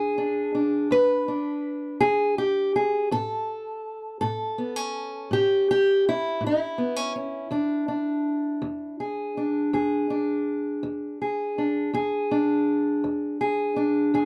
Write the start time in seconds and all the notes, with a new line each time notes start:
Already playing: E2 D4 G#4
0.18 D4
0.55 D4
0.91 E2 B4
1.28 D4
2.00 E2 G#4
2.38 G4
2.76 G#4
3.11 A2 A4
4.21 A2 A4
4.58 B3
4.76 C#4
5.31 A2 G4
5.71 G4
6.09 E4
6.41 A2
6.46 E4
6.78 B3
6.96 C#4
7.16 C#4
7.51 E2 D4
7.88 D4
8.62 E2
9.00 G#4
9.37 D4
9.73 E2 G#4
10.10 D4
10.83 E2
11.22 G#4
11.58 D4
11.93 E2 G#4
12.31 D4
13.04 E2
13.41 G#4
13.76 D4
14.14 E2 G#4